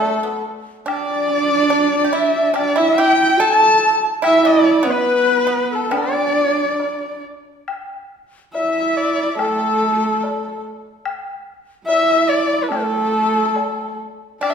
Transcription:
Already playing: A3 A4
0.02 low woodblock
0.23 B3
0.86 D4 D5, high woodblock
1.40 B3
1.70 D4
2.04 G4
2.13 E4 E5
2.54 D4 D5, high woodblock
2.76 E4 E5
2.97 G4 G5
3.22 G5
3.39 A4 A5
4.22 E4 E5, high woodblock
4.44 D4 D5
4.83 B3 B4
4.91 B4
5.47 B3
5.71 A4
5.75 A4
5.91 B3 D4 D5, high woodblock
5.97 D5
6.21 C#4
6.32 D4
6.80 low woodblock
7.68 high woodblock
8.53 E4 E5, low woodblock
8.97 D5
9.39 A3 A4, high woodblock
10.23 low woodblock
11.05 high woodblock
11.87 E4 E5, low woodblock
12.28 D5
12.63 B4
12.69 A3 A4, high woodblock
13.56 high woodblock, low woodblock
14.41 D4 D5, high woodblock
14.50 D4 E5

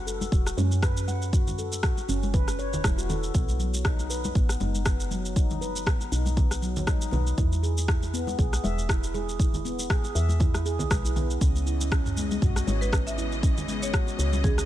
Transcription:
Already playing: F#1
0.07 A4, shaker
0.21 muted conga, high conga, shaker
0.32 E1 F#4, kick, shaker
0.46 cross-stick, muted conga, shaker
0.57 F#2 C#4, high conga, shaker
0.71 high conga, shaker
0.82 B4, kick, cross-stick, muted conga, shaker
0.97 shaker
1.08 F#5, muted conga, high conga, shaker
1.22 shaker
1.33 F#4, kick, muted conga, shaker
1.47 high conga, low conga, shaker
1.58 A4, shaker
1.72 muted conga, shaker
1.83 F#4, kick, cross-stick, shaker
1.98 muted conga, shaker
2.09 F#1 C#4, shaker
2.23 muted conga, high conga, shaker
2.34 B4, kick, low conga, shaker
2.48 cross-stick, muted conga, shaker
2.59 C#5, shaker
2.73 E1, low conga, shaker
2.84 E1 E4, kick, cross-stick, muted conga, high conga, shaker
2.98 F#4, shaker
3.09 A4, muted conga, high conga, low conga, shaker
3.23 shaker
3.34 B1 B3, kick, muted conga, shaker
3.49 high conga, shaker
3.59 F#3, shaker
3.74 muted conga, shaker
3.85 D#4, kick, cross-stick, shaker
3.99 muted conga, shaker
4.10 B4, shaker
4.24 muted conga, high conga, shaker
4.35 A1 B3, kick, shaker
4.49 cross-stick, muted conga, shaker
4.60 F#1 D#4, high conga, shaker
4.75 high conga, shaker
4.86 B3, kick, cross-stick, shaker
5.00 shaker
5.11 F#3, muted conga, high conga, shaker
5.25 shaker
5.36 D#4, kick, muted conga, shaker
5.50 high conga, low conga, shaker
5.61 B4, shaker
5.75 muted conga, shaker
5.86 B3, kick, cross-stick, shaker
6.00 muted conga, shaker
6.12 B1 D#4, shaker
6.26 muted conga, high conga, shaker
6.37 B3, kick, low conga, shaker
6.51 cross-stick, muted conga, shaker
6.62 F#3, shaker
6.76 A1, low conga, shaker
6.87 D#4, kick, cross-stick, muted conga, high conga, shaker
7.01 shaker
7.11 B1 B4, muted conga, high conga, low conga, shaker
7.27 shaker
7.38 E2 E4, kick, muted conga, shaker
7.52 high conga, shaker
7.63 G#4, shaker
7.78 muted conga, shaker
7.88 E4, kick, cross-stick, shaker
8.03 muted conga, shaker
8.14 B3, shaker
8.27 muted conga, high conga, shaker
8.38 B1 G#4, kick, shaker
8.53 cross-stick, muted conga, shaker
8.64 E1 E5, high conga, shaker
8.78 high conga, shaker
8.89 E4, kick, cross-stick, shaker
9.03 shaker
9.14 G#4, muted conga, high conga, shaker
9.29 shaker
9.39 E4, kick, muted conga, shaker
9.53 high conga, low conga, shaker
9.65 B3, shaker
9.79 muted conga, shaker
9.90 G#4, kick, cross-stick, shaker
10.04 muted conga, shaker
10.15 E2 E5, shaker
10.29 muted conga, high conga, shaker
10.40 E4, kick, low conga, shaker
10.54 cross-stick, muted conga, shaker
10.66 G#4, shaker
10.79 B1, low conga, shaker
10.90 B1 B4, kick, cross-stick, muted conga, high conga, shaker
11.05 E4, shaker
11.16 B3, muted conga, high conga, low conga, shaker
11.30 shaker
11.40 C#2 C#3 E3 B3 C#4 D#5, kick, muted conga, shaker
11.55 high conga, shaker
11.66 E4, shaker
11.81 muted conga, shaker
11.92 C#4, kick, cross-stick, shaker
12.06 mid tom, muted conga, shaker
12.17 G#3, shaker
12.31 muted conga, high conga, shaker
12.42 B1 F#4, kick, mid tom, shaker
12.56 cross-stick, muted conga, shaker
12.67 G#1 C#5, high conga, shaker
12.81 B4, high conga, shaker
12.92 C#4, kick, cross-stick, shaker
13.07 E5, shaker
13.18 E4, muted conga, high conga, shaker
13.32 shaker
13.43 C#4, kick, muted conga, shaker
13.57 high conga, low conga, shaker
13.68 G#3, shaker
13.82 C#5, muted conga, shaker
13.93 F#4, kick, cross-stick, shaker
14.07 muted conga, shaker
14.19 C#2 C#5, shaker
14.33 muted conga, high conga, shaker
14.44 C#4 G#4, kick, low conga, shaker
14.58 cross-stick, muted conga, shaker

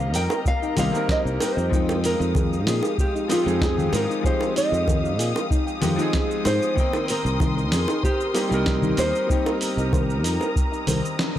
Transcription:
Already playing: C2 G3 A#3 C4 D#4 G4 A#4 D#5 F5 A#5
0.14 F2 D#4 G5, open hi-hat, cabasa
0.30 A#4, high bongo, cabasa
0.45 F5, kick, cabasa
0.62 D#4, cabasa
0.76 C2 G3 A#3 C4 D#4 G4 C5 F5, open hi-hat, high bongo, low conga, cabasa
0.91 G3 A#3 C4 D#4, cabasa
0.96 A#4
1.09 C5 D#5, kick, snare, cabasa
1.25 C2 A#4, cabasa
1.40 C5 G5, open hi-hat, high bongo, cabasa
1.57 F2 G5, cabasa
1.69 F3 G#3 C4 D#4 F5 D#6, kick, cabasa
1.73 D#4 G5
1.89 G4, high bongo, cabasa
2.04 A#4, open hi-hat, cabasa
2.20 F2 D#4, cabasa
2.35 G#4, kick, high bongo, low conga, cabasa
2.53 cabasa
2.67 A#2 D#4 G#4, snare, open hi-hat, cabasa
2.83 G4, high bongo, cabasa
2.98 G4, kick, cabasa
3.15 D#4, cabasa
3.28 F3 G#3 C4 D#4 G4 G#4, open hi-hat, high bongo, cabasa
3.32 F4
3.42 F3 G#3 C4
3.46 F2 D#4 G#4, cabasa
3.61 D#4 G#4, kick, snare, cabasa
3.78 G4, low conga, cabasa
3.93 G#2 A#4, open hi-hat, high bongo, cabasa
4.09 D#4, cabasa
4.21 F3 G#3 C4 D#4 G#4, kick
4.26 G4 C5, cabasa
4.41 high bongo, cabasa
4.56 D#4 D#5, open hi-hat, cabasa
4.72 F2 G4, cabasa
4.87 kick, high bongo, low conga, cabasa
5.04 D#4, cabasa
5.19 A#2 G#4, open hi-hat, cabasa
5.36 high bongo, cabasa
5.51 D#4, kick, cabasa
5.67 G4, cabasa
5.81 F2 F3 G#3 C4 D#4 G4, open hi-hat, high bongo, low conga, cabasa
5.96 F3 G#3 C4 D#4, cabasa
6.00 D#4 G#4
6.13 G#4, kick, snare, cabasa
6.31 cabasa
6.45 G#2 D#4 C5, open hi-hat, high bongo, cabasa
6.62 G4, cabasa
6.74 D#3 A#3 C4 D#4 A#4 C6, kick, cabasa
6.80 G5
6.93 D#4, high bongo, cabasa
7.08 A#4 C5, open hi-hat, cabasa
7.25 C2, cabasa
7.40 D#4, kick, high bongo, low conga, cabasa
7.57 A#4, cabasa
7.72 F2 G#4, snare, open hi-hat, cabasa
7.88 D#4, high bongo, cabasa
8.03 G4 C5, kick, cabasa
8.21 cabasa
8.34 G3 A#3 C4 D#4 G4, open hi-hat, high bongo, cabasa
8.49 C2 G3 A#3 C4 D#4 A#4, cabasa
8.54 A#4
8.66 kick, snare, cabasa
8.82 D#4, low conga, cabasa
8.97 D#2 C5, open hi-hat, high bongo, cabasa
9.15 cabasa
9.27 G3 A#3 C4 D#4 A#5, kick, cabasa
9.31 D#4 G4
9.46 A#4, high bongo, cabasa
9.61 open hi-hat, cabasa
9.77 C2 D#4, cabasa
9.93 C5, kick, high bongo, low conga, cabasa
10.10 cabasa
10.24 F2 D#4, open hi-hat, cabasa
10.40 A#4, high bongo, cabasa
10.56 kick, cabasa
10.72 D#4, cabasa
10.87 C2 C5, open hi-hat, high bongo, low conga, cabasa
11.05 cabasa
11.19 D#4, snare, cabasa
11.35 A#4, low conga

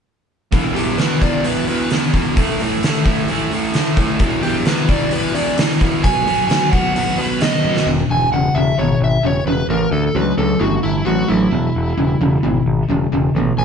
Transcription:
0.52 E2 B2 E3, kick, open hi-hat
0.74 E2 B2 E3 G4, open hi-hat
0.98 E2 B2 E3 B4, snare, open hi-hat
1.21 E2 B2 E3 D5, kick, open hi-hat
1.44 E2 B2 E3 B4, open hi-hat
1.67 E2 B2 E3 B4, open hi-hat
1.90 E2 B2 E3, snare, open hi-hat
2.13 E2 B2 E3, kick, open hi-hat
2.37 A2 E3 A3, kick, open hi-hat
2.60 A2 E3 A3, open hi-hat
2.83 A2 E3 A3, snare, open hi-hat
3.05 A2 E3 A3, kick, open hi-hat
3.28 A2 E3 A3, open hi-hat
3.51 A2 E3 A3, open hi-hat
3.74 A2 E3 A3, snare, open hi-hat
3.97 A2 E3 A3, kick, open hi-hat
4.19 E2 B2 E3, kick, open hi-hat
4.43 E2 B2 E3 G4, open hi-hat
4.65 E2 B2 E3 B4, snare, open hi-hat
4.88 E2 B2 E3 D5, kick, open hi-hat
5.11 E2 B2 E3 B4, open hi-hat
5.34 E2 B2 E3 D5, open hi-hat
5.58 E2 B2 E3, snare, open hi-hat
5.81 E2 B2 E3, kick, open hi-hat
6.04 B2 F#3 B3 G#5, kick, open hi-hat
6.26 B2 F#3 B3, open hi-hat
6.48 B2 F#3 B3 G#5, snare, open hi-hat
6.71 B2 F#3 B3 F#5, kick, open hi-hat
6.96 B2 F#3 B3 F#5, open hi-hat
7.18 B2 F#3 B3 B4, open hi-hat
7.41 B2 F#3 B3 D#5, snare, open hi-hat
7.64 B2 F#3 B3, high tom
7.77 snare
7.87 E1 E2 B2
8.10 E1 G#5
8.32 E1 E2 C#3 F#5
8.55 E1 E2 C#3 E5
8.78 G#1 E2 B2 C#5
9.00 G#1 E5
9.23 E1 E2 C#3 C#5
9.46 E1 E2 C#3 B4
9.69 A1 A2 E3 A#4
9.91 D2 A4
10.15 C#2 A2 F#3 B4
10.38 C#2 A2 F#3 A4
10.59 G1 A2 E3 F#4
10.83 G1 E4
11.05 A1 A2 F#3 F#4
11.28 A1 A2 F#3 E4
11.51 E1 E2 B2
11.76 E1
11.97 E1 E2 C#3
12.21 E1 E2 C#3
12.43 G#1 E2 B2
12.66 G#1
12.89 E1 E2 C#3
13.12 E1 E2 C#3
13.35 A1 E2 B2
13.58 A1 G#5

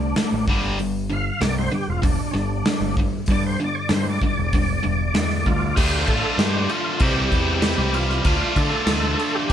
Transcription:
Already playing: C2 D3 A3 D4
0.16 D3 A3, snare, open hi-hat
0.33 A1
0.47 G1 G2 D3 G3, kick
0.79 G2 D3, open hi-hat
1.10 G2 D3 F5
1.41 C2 G2 D3 D5, snare, open hi-hat
1.58 C5
1.72 G2 D3 G4
1.88 E1 F4
2.02 G2 D3 D4, kick, open hi-hat
2.31 G1 G2 D3 C#4
2.36 D4, snare
2.65 G2 D3, snare, open hi-hat
2.80 G1
2.97 G2 D3, kick
3.26 G2, kick, open hi-hat
3.31 D3 D5
3.46 C5
3.60 G2 D3
3.64 D5
3.75 C#5
3.79 D5
3.89 G2 D3, snare, open hi-hat
3.94 C5
4.09 D5
4.22 G2 D3, kick
4.26 D5
4.38 E1
4.53 G2 D3, kick, open hi-hat
4.83 E1 G2 D3
5.14 E2 G2 D3, snare, open hi-hat
5.30 snare
5.46 D2 G2 D3 F4, kick
5.76 D2 D3 A3 D4 F4 G4, kick, crash
6.00 C5
6.07 A1 A4, kick, crash
6.38 G2 G4, snare, crash
6.69 F4, crash
7.00 C2 C3 E3 G3 C4 E4 G4, kick, crash
7.32 E2, kick, crash
7.62 snare, crash
7.78 C2
7.94 F4, crash
8.10 snare
8.24 D2 D3 A3 D4 F4, kick, crash
8.56 D3 A4, kick, crash
8.86 D2, snare, crash
9.19 crash
9.35 G4
9.49 A1 A2, kick

